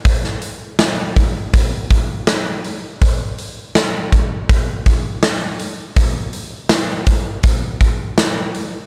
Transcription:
\new DrumStaff \with { instrumentName = "Drums" } \drummode { \time 4/4 \tempo 4 = 81 <hho bd>16 sn16 hho8 <hho sn>8 <hho bd>8 <hho bd>8 <hho bd>8 <hho sn>8 hho8 | <hho bd>8 hho8 <hho sn>8 <hho bd>8 <hho bd>8 <hho bd>8 <hho sn>8 hho8 | <hho bd>8 hho8 <hho sn>8 <hho bd>8 <hho bd>8 <hho bd>8 <hho sn>8 hho8 | }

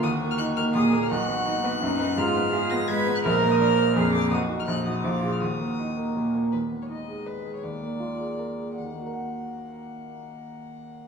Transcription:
<<
  \new Staff \with { instrumentName = "Violin" } { \time 3/4 \key ees \minor \tempo 4 = 164 ees'''8. f'''16 ges'''8 f'''8 ees'''8. f'''16 | fis'''2. | f'''4. bes'''8 aes'''8. ges'''16 | f'''8. ees'''16 f'''4. d'''8 |
dis'''8. f'''16 ges'''8 ees'''8 d'''8. f'''16 | ees'''2~ ees'''8 r8 | ces''8. des''16 ees''4 ces''8. des''16 | d''2. |
ges''2.~ | ges''2. | }
  \new Staff \with { instrumentName = "Cello" } { \time 3/4 \key ees \minor ges'2 aes'4 | fis'2 dis'4 | f'4 aes'4 ces''4 | bes'2 aes'4 |
fis'4 ees'4 f'4 | ges'2~ ges'8 r8 | aes2.~ | aes2~ aes8 r8 |
bes2.~ | bes2. | }
  \new Staff \with { instrumentName = "Grand piano" } { \time 3/4 \key ees \minor ees,8 bes8 ees'8 bes8 bes,8 bes8 | b,,8 b8 dis'8 b8 fis,8 b8 | aes,8 ces'8 f'8 ces'8 aes8 ces'8 | bes,,8 bes8 d'8 bes8 f,8 bes8 |
b,,8 <dis' fis'>8 bes,,8 <ees' ges'>8 bes,,8 <f' aes'>8 | ees,8 bes8 ees'8 bes8 bes,8 bes8 | ees,8 ces'8 ees'8 aes'8 ces''8 aes'8 | ees,8 bes8 f'8 aes'8 bes'8 aes'8 |
<ees, ees bes ges' bes' ges''>2.~ | <ees, ees bes ges' bes' ges''>2. | }
>>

